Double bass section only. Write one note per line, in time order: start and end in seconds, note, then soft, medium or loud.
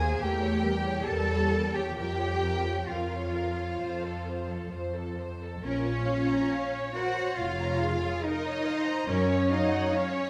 0.00 0.11 D#2 medium
0.20 0.96 E2 medium
1.07 1.87 E2 medium
1.97 2.79 F2 medium
2.90 3.70 F2 medium
3.81 4.61 F2 medium
4.71 5.53 F2 medium
5.64 6.37 A#1 medium
7.38 8.09 F1 medium
9.08 9.80 F#2 medium